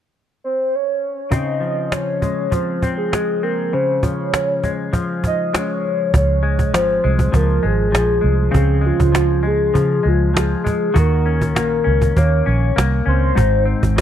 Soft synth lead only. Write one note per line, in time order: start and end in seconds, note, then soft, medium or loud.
0.44 0.77 C5 medium
0.75 1.34 C#5 medium
1.33 1.94 D#5 loud
1.93 2.53 C#5 medium
2.53 2.95 C5 loud
2.97 3.45 G#4 medium
3.43 3.75 A#4 medium
3.73 4.05 C5 medium
4.04 4.94 C#5 medium
5.27 5.53 D#5 loud
5.57 6.11 C#5 loud
6.16 6.71 C#5 loud
6.75 7.37 C5 loud
7.35 7.68 A#4 medium
7.66 8.55 G#4 loud
8.56 8.87 G#4 loud
8.86 9.48 F4 loud
9.47 10.09 G#4 medium
10.08 10.40 F4 medium
10.39 10.97 G#4 loud
10.98 11.53 A#4 loud
11.58 12.19 A#4 medium
12.17 12.77 C#5 medium
13.08 13.64 C5 loud